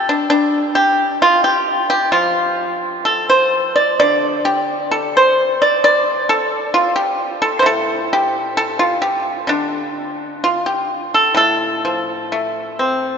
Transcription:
Already playing: G3
0.09 D4
0.30 D4
0.75 G4
1.22 F4
1.44 G4
1.90 G4
2.12 F3 F4
3.05 A4
3.30 C5
3.76 D5
4.00 D3 D5
4.45 G4
4.91 A4
5.17 C5
5.62 D5
5.84 D5
6.29 A4
6.74 F4
6.96 G4
7.42 A4
7.59 A2 C5
7.66 A4
8.13 G4
8.57 A4
8.79 F4
9.02 G4
9.47 D3 D4
10.44 F4
10.66 G4
11.14 A4
11.34 A2 A4
11.85 F3
12.32 A3
12.79 C4

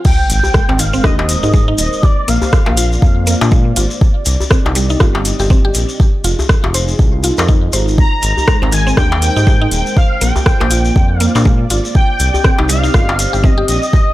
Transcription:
0.05 G#3 D#4 A#4 C5 G5, kick, crash, sub drop, shekere
0.30 G#1, open hi-hat, shekere
0.43 djembe bass, shekere
0.54 G#3, kick, cross-stick, shekere
0.69 G#1 C4, djembe slap, djembe bass
0.79 D#3 F5, open hi-hat, shekere
0.93 C4, shekere
0.99 F5
1.04 D#2 D4 D#5, kick, cross-stick, djembe tone, shekere
1.19 djembe slap
1.28 D#5, open hi-hat, shekere
1.43 G#2 D#4, djembe tone, shekere
1.53 G#3, kick, djembe tone, shekere
1.68 D#4
1.78 D#1 D#5, open hi-hat, shekere
1.93 shekere
2.02 A#3 F4 D5, kick, djembe tone, shekere
2.28 A#1 A#3 F5, open hi-hat, shekere
2.42 djembe tone, djembe bass, shekere
2.52 kick, cross-stick, shekere
2.66 A#1 A#3, djembe slap, djembe bass
2.77 F4, open hi-hat, shekere
2.92 shekere
3.02 F2, kick, shekere
3.27 A#3, open hi-hat, shekere
3.41 A#2 D4, djembe slap, shekere
3.51 G#3, kick, shekere
3.76 G#1 F4, open hi-hat, djembe tone, shekere
3.90 shekere
4.01 C4 G4 D#5, kick, shekere
4.25 C2, open hi-hat, shekere
4.40 djembe bass, shekere
4.51 C4, kick, cross-stick, shekere
4.65 C2 D#4, djembe slap, djembe bass
4.75 G3, open hi-hat, shekere
4.90 D#4, shekere
5.00 G1 F4, kick, cross-stick, djembe tone, shekere
5.15 djembe slap
5.25 open hi-hat, shekere
5.39 G1 G4, djembe tone, shekere
5.50 C4, kick, djembe tone, shekere
5.65 G4
5.74 A#1, open hi-hat, shekere
5.89 shekere
6.00 D#4 F4 G#4, kick, djembe tone, shekere
6.24 F1 F4, open hi-hat, shekere
6.39 djembe tone, djembe bass, shekere
6.49 kick, cross-stick, shekere
6.64 F1 F4, djembe slap, djembe bass
6.74 C5, open hi-hat, shekere
6.88 shekere
6.99 C2, kick, shekere
7.23 F4, open hi-hat, shekere
7.37 F2 A#4, djembe slap, shekere
7.48 D#4, kick, shekere
7.73 G#1 C5, open hi-hat, djembe tone, shekere
7.88 shekere
7.98 G#3 A#4 C5 A#5, kick, shekere
8.22 G#1, open hi-hat, shekere
8.37 djembe bass, shekere
8.48 G#3, kick, cross-stick, shekere
8.62 G#1 C4, djembe slap, djembe bass
8.72 D#3 G#5, open hi-hat, shekere
8.87 C4, shekere
8.97 D#2 D4 G5, kick, cross-stick, djembe tone, shekere
9.12 djembe slap
9.22 G5, open hi-hat, shekere
9.36 G#2 D#4, djembe tone, shekere
9.47 G#3, kick, djembe tone, shekere
9.62 D#4
9.71 D#1 G5, open hi-hat, shekere
9.86 shekere
9.96 A#3 F4 D5 F5, kick, djembe tone, shekere
10.21 A#1 A#3 G5, open hi-hat, shekere
10.36 djembe tone, djembe bass, shekere
10.46 kick, cross-stick, shekere
10.60 A#1 A#3, djembe slap, djembe bass
10.71 F4, open hi-hat, shekere
10.85 shekere
10.95 F2, kick, shekere
11.19 A#3 F5, open hi-hat, shekere
11.35 A#2 D4, djembe slap, shekere
11.45 G#3, kick, shekere
11.70 G#1 F4, open hi-hat, djembe tone, shekere
11.85 shekere
11.95 C4 G4 D#5 G5, kick, shekere
12.19 C2, open hi-hat, shekere
12.34 djembe bass, shekere
12.44 C4, kick, cross-stick, shekere
12.58 C2 D#4, djembe slap, djembe bass
12.69 G3 F5, open hi-hat, shekere
12.83 D#4, shekere
12.94 G1 F4, kick, cross-stick, djembe tone, shekere
13.09 djembe slap
13.19 open hi-hat, shekere
13.33 G1 G4, djembe tone, shekere
13.44 C4 D#5, kick, djembe tone, shekere
13.58 G4
13.68 A#1 D#5, open hi-hat, shekere
13.83 shekere
13.93 D#4 F4 G#4, kick, djembe tone, shekere

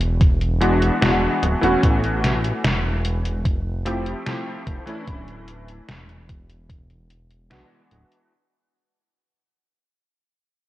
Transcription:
Already playing: E1
0.01 closed hi-hat
0.21 kick, closed hi-hat
0.41 closed hi-hat
0.61 E3 G#3 B3 D4 F#4, closed hi-hat
0.82 closed hi-hat
1.01 E1 E3 G#3 B3 D4 F#4, snare, closed hi-hat
1.43 D1, closed hi-hat
1.61 E1 E3 A3 B3 C#4 F#4, closed hi-hat
1.83 A1, kick, closed hi-hat
2.03 closed hi-hat
2.24 snare, closed hi-hat
2.44 closed hi-hat
2.64 E1, snare, closed hi-hat
3.05 closed hi-hat
3.25 closed hi-hat
3.45 F1, kick, closed hi-hat
3.85 F3 A3 C4 E4 G4, closed hi-hat
4.06 closed hi-hat
4.26 F3 A3 C4 E4 G4, snare, closed hi-hat
4.67 F1, kick, closed hi-hat
4.86 E3 A3 C#4 D4 E4, closed hi-hat
5.07 D1, kick, closed hi-hat
5.28 closed hi-hat
5.48 closed hi-hat
5.69 closed hi-hat
5.89 E1, snare, closed hi-hat
6.09 closed hi-hat
6.29 kick, closed hi-hat
6.50 closed hi-hat
6.70 kick, closed hi-hat
6.90 closed hi-hat
7.10 closed hi-hat
7.31 closed hi-hat
7.50 B1 E3 G#3 B3 D4 F#4, snare, closed hi-hat
7.91 D1, closed hi-hat
8.12 closed hi-hat

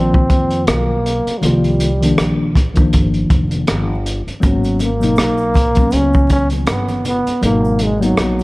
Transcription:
Already playing: A#1 D#3 F3 A#3 C4 F4
0.14 kick
0.30 F2, kick, closed hi-hat
0.50 closed hi-hat
0.67 B1 A#3, cross-stick, closed hi-hat
1.06 closed hi-hat
1.27 muted upright bass stroke, closed hi-hat
1.38 D#3 F#3
1.42 C2 F3 G3 A#3 F4, closed hi-hat
1.64 closed hi-hat
1.80 closed hi-hat
2.01 D#3 F3 A#3, closed hi-hat
2.05 D4
2.18 A#1, cross-stick, closed hi-hat
2.55 kick, cross-stick, closed hi-hat
2.74 D#3 F3 A#3 D4, kick, closed hi-hat
2.93 G1, kick, closed hi-hat
3.14 closed hi-hat
3.30 F1, kick, closed hi-hat
3.51 closed hi-hat
3.67 G1, cross-stick, closed hi-hat
4.06 closed hi-hat
4.27 muted upright bass stroke, closed hi-hat
4.40 G#1 F#3 A#3 B3, kick, closed hi-hat, shaker
4.44 F#3 C#4
4.64 closed hi-hat, shaker
4.79 A#3, closed hi-hat, high conga, shaker
5.00 B2 F#3 A#3 D#4, closed hi-hat, shaker
5.16 B1, cross-stick, closed hi-hat, shaker
5.38 shaker
5.54 kick, closed hi-hat, low conga, shaker
5.75 F#3 A#3 B3 C#4, kick, closed hi-hat, shaker
5.90 C#2, closed hi-hat, shaker
5.95 C#4
6.13 kick, shaker
6.29 C#4, kick, closed hi-hat, shaker
6.50 closed hi-hat, high conga, shaker
6.66 G1, cross-stick, closed hi-hat, shaker
6.71 B3
6.89 closed hi-hat, high conga, shaker
7.05 B3, closed hi-hat, low conga, shaker
7.27 muted upright bass stroke, closed hi-hat, shaker
7.41 G#1 B2 F#3 A#3, closed hi-hat, shaker
7.46 D#4
7.65 shaker
7.79 closed hi-hat, high conga, shaker
7.83 G#3
8.00 F#3 A#3 B3, closed hi-hat, shaker
8.04 D#4
8.17 A#1, cross-stick, closed hi-hat, shaker
8.39 shaker

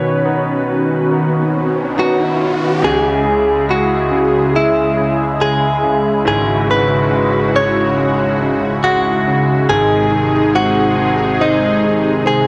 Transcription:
Already playing: B2 D#3 C#4 F#4 B4 C#5, riser
0.25 B3 C#4 D#4
1.11 B3 C#4 D#4
1.96 B3 C#4 D#4 F#4
2.82 C#2 C#3 G#3 E4 G#4
3.25 C#3
3.68 G#3 F#4
4.11 C#3
4.55 G#3 E4
4.98 C#3
5.40 G#3 G#4
5.83 C#3
6.25 G#1 G#2 F#4 G#4
6.69 C#3 B4
7.11 G#3
7.55 C#3 C#5
7.97 G#3
8.41 C#3
8.84 G#3 F#4
9.27 C#3
9.68 G#1 G#2 C3 G#3 D#4 G#4
10.11 D#3
10.54 C4 F#4
10.97 D#3
11.40 C4 D#4
11.82 D#3
12.25 C4 G#4

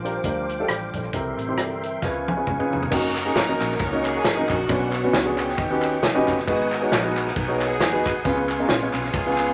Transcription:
Already playing: A#1 F3 G3 D4 C5 F5 G5 D6
0.05 D4 F4 G4 A#4, closed hi-hat
0.24 D2 D4 F4 G4 A#4, kick, closed hi-hat
0.49 closed hi-hat
0.60 D4 F4 G4 A4
0.68 A1 D5, cross-stick, closed hi-hat
0.94 A#1 A4 D5, kick, closed hi-hat
1.03 cross-stick
1.13 C2 C3 E3 C4 E4 G4 A#4 E5 C6, kick, closed hi-hat
1.37 A1, closed hi-hat
1.48 C4 E4 G4 C5
1.57 G1 A4 D5, cross-stick, closed hi-hat
1.83 A#4 E5, closed hi-hat
2.01 C#2 C#3 F3 G#3 B3 C#4 F4 G#4 B4 F5 G#5 C#6, kick, snare
2.27 G#5, high tom
2.37 C#4 F4 G#4 B4
2.47 F#1 G#5, kick, mid tom
2.59 C#4 F4 G#4 B4, mid tom
2.72 F1 A#5, floor tom
2.82 floor tom
2.91 F#1 A#3 C#4 D#4 F#4 A#4 D#5 F#5 C#6, kick, crash
3.16 C#4 D#4 A#4, clap, ride
3.25 A#3 C#4 D#4 F#4 G#4
3.36 G#1, snare, ride
3.48 A#3 C#4 D#4 F#4 A#4
3.61 A#1, clap, ride
3.71 snare
3.79 C#2 C#4 D#4 A#4, kick, ride
3.92 A#3 C#4 D#4 F#4 C#5
4.05 C#4 D#4 G#4, clap, ride
4.24 G#1, snare, ride
4.37 A#3 C#4 D#4 F#4 A#4
4.49 A#1 C#4 D4 F#4, kick, clap, ride
4.69 B1 B2 B3 C#4 D4 F#4 B4 C#5 F#5, kick, ride
4.93 C#4 D4 F#4, clap, ride
5.04 B3 C#4 D4 F#4 B4
5.13 C#2, snare, ride
5.25 B3 C#4 D4 F#4 G#4
5.38 B3 C#4 G4, clap, ride
5.49 snare
5.58 D#2 D#3 D#5 G5, kick, ride
5.71 C#4 D#4 F#4 G4 B4
5.82 clap, ride
6.02 E1, snare, ride
6.14 C#4 D#4 F#4 G4 B4
6.28 F#1, kick, clap, ride
6.38 snare
6.47 G#1 G#2 B3 D#4 F#4 G#4 B4 F#5 G#5 D#6, kick, ride
6.72 D#4 F#4 A#4, clap, ride
6.82 B3 D#4 F#4 G#4 C#5
6.92 A#1, snare, ride
7.04 B3 D#4 F#4 G#4 B4
7.17 clap, ride
7.27 snare
7.36 B1 D#4 F#4 A#4, kick, ride
7.48 B3 D#4 F#4 G#4 C#5
7.61 B3 D#4 G#4, clap, ride
7.80 D#2, snare, ride
7.93 B3 D#4 F#4 G#4 B4
8.06 kick, clap, ride
8.24 C#2 C#3 G#3 B3 C#4 F4 G#4 B4 F5 G#5 C#6, kick, ride
8.49 G#3 B3 F4, clap, ride
8.60 B3 C#4 F4 G#4 A#4
8.69 A#1, snare, ride
8.82 B3 C#4 F4 G#4 B4
8.94 B1 B3 F4 G#4, clap, ride
9.04 snare
9.13 C#2, kick, ride
9.26 B3 C#4 F4 G#4 B4
9.38 clap, ride

